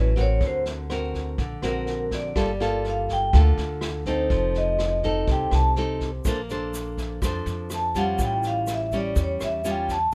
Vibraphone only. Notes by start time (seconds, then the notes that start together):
0.00 B4
0.21 C#5
0.47 C5
1.65 A#4
2.15 D5
2.90 F5
3.13 G5
4.09 C5
4.58 D#5
5.32 G5
5.55 A5
7.74 A5
7.97 F#5
8.25 G5
8.47 F5
8.74 E5
8.97 D5
9.24 C#5
9.44 E5
9.71 G5
9.92 A5